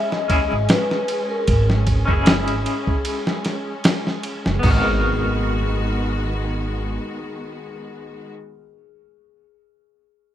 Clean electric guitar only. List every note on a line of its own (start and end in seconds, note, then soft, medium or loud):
0.00 0.24 C#4 medium
0.00 0.26 E4 medium
0.00 0.27 G#4 medium
0.28 0.52 C#4 medium
0.28 0.52 D#4 medium
0.28 0.53 E4 medium
0.28 0.54 G#4 medium
2.05 3.40 C#4 medium
2.05 3.41 D#4 medium
2.10 3.42 E4 medium
2.10 3.43 G#4 loud
4.59 8.28 B3 medium
4.59 8.32 D#4 medium
4.67 8.35 F#4 medium
4.67 8.39 A#4 loud